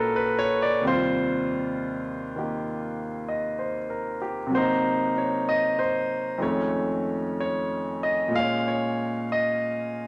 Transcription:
Already playing: A#2 G#3 C#4 D4 F#4 A4 A#4 B4
0.16 B4
0.39 C#5
0.62 D5
0.81 D#2 C3 G3
0.87 F4 C5
2.36 D#3 A#3 G4
3.29 D#5
3.59 C5
3.90 A#4
4.22 G4
4.47 C3 F#3
4.54 A#3 D#4 C5
5.18 C#5
5.49 D#5
5.79 C5
6.38 F2 D#3 G#3 A3
6.42 C#4 C#5
7.40 C#5
8.03 D#5
8.28 A#2
8.32 G#3 F5
8.39 C#4
8.68 C#5
9.32 D#5

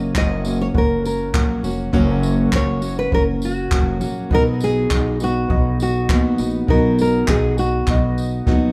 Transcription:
Already playing: F#1 F#2 C#3 F#3 A#3 C#4 F#4 C#5
0.15 F#1 F#3 A#3 C#4 F#4 D#5, kick, clap
0.45 F#3 A#3 C#4 F#4, tambourine
0.61 C#5
0.74 F#1 A#3 C#4 F#4 C#5, kick
0.78 A#4
1.05 A#4, tambourine
1.33 A#1 F#3 A#3 C#4 F#4, kick, clap
1.63 F1 F#3 A#3 C#4 F#4, tambourine
1.92 F#1 F#2 C#3 F#3 A#3 C#4 F#4 C#5, kick
2.23 tambourine
2.52 F#1 A#3 C#4 F#4 C#5, kick, clap
2.82 F#3 A#3 C#4 F#4, tambourine
2.99 B4
3.12 F#1 A#3 C#4 F#4 A#4 C#5, kick
3.42 F#4, tambourine
3.71 F1 F#3 A#3 C#4 F#4, kick, clap
4.01 A#1 F#3 A#3 C#4 F#4, tambourine
4.30 B1 B2 F#3 B3 D#4 F#4 D#5, kick
4.34 A#4
4.60 G#4, tambourine
4.90 B1 F#3 B3 D#4 F#4, kick, clap
5.20 B3 D#4 F#4, tambourine
5.48 B1 B3 D#4 F#4 D#5, kick
5.80 F#4, tambourine
6.09 D#2 F#3 B3 D#4 F#4, kick, clap
6.38 A#1 D#4 F#4, tambourine
6.42 B3
6.67 B1 B2 F#3 B3 D#4 F#4 A#4 D#5, kick
6.99 A#4, tambourine
7.28 B1 F#3 B3 D#4 F#4 G#4, kick, clap
7.57 B3 D#4 F#4, tambourine
7.87 B1 B3 D#4 F#4 D#5, kick, clap
8.18 tambourine
8.46 A#1 F#3 B3 D#4 F#4, kick, snare

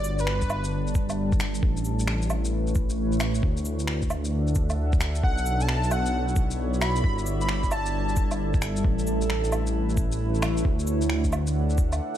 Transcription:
Already playing: G1 G3 B3 D4 F#4 C#5 D5
0.04 cabasa
0.19 B4 A5, shaker
0.27 finger snap
0.42 A4, kick, shaker
0.50 cabasa, low woodblock
0.64 shaker
0.87 shaker
0.95 kick, cabasa
1.10 low woodblock, shaker
1.32 kick, shaker
1.40 finger snap, cabasa
1.55 shaker
1.63 A1 A3, kick
1.77 E4, shaker
1.85 cabasa
1.90 B4
2.00 shaker
2.05 C#5, finger snap
2.22 shaker
2.30 cabasa, low woodblock
2.45 shaker
2.67 shaker
2.75 kick, cabasa
2.90 shaker
3.12 shaker
3.20 finger snap, cabasa, low woodblock
3.35 shaker
3.43 D2 D4, kick
3.57 shaker
3.65 A4 E5, cabasa
3.80 shaker
3.88 finger snap
3.92 F#5
4.02 kick, shaker
4.10 cabasa, low woodblock
4.25 shaker
4.47 shaker
4.55 kick, cabasa
4.70 low woodblock, shaker
4.93 kick, shaker
5.01 finger snap, cabasa
5.15 shaker
5.23 B1 B3 E4 E5 F#5, kick
5.34 C#5, shaker
5.45 F#4, cabasa
5.61 A5, shaker
5.69 finger snap
5.84 shaker
5.91 F#5, cabasa, low woodblock
6.06 D5, shaker
6.28 shaker
6.36 kick, cabasa
6.51 shaker
6.74 shaker
6.81 B5, finger snap, cabasa, low woodblock
6.96 shaker
7.04 G1 G3, kick
7.18 D4, shaker
7.26 cabasa
7.41 B5, shaker
7.49 finger snap
7.64 kick, shaker
7.68 A4 A5, cabasa, low woodblock
7.86 A5, shaker
8.09 shaker
8.16 kick, cabasa
8.31 low woodblock, shaker
8.54 kick, shaker
8.62 finger snap, cabasa
8.76 shaker
8.84 A1 A3, kick
8.99 shaker
9.07 cabasa
9.15 E4
9.21 B4, shaker
9.30 finger snap
9.44 shaker
9.52 cabasa, low woodblock
9.67 C#5, shaker
9.90 shaker
9.97 kick, cabasa
10.12 shaker
10.35 shaker
10.42 finger snap, cabasa, low woodblock
10.57 shaker
10.65 D2 D4, kick
10.79 A4, shaker
10.85 F#5, cabasa
11.02 shaker
11.10 finger snap
11.16 E5
11.24 kick, shaker
11.33 cabasa, low woodblock
11.47 shaker
11.70 shaker
11.78 kick, cabasa
11.92 low woodblock, shaker

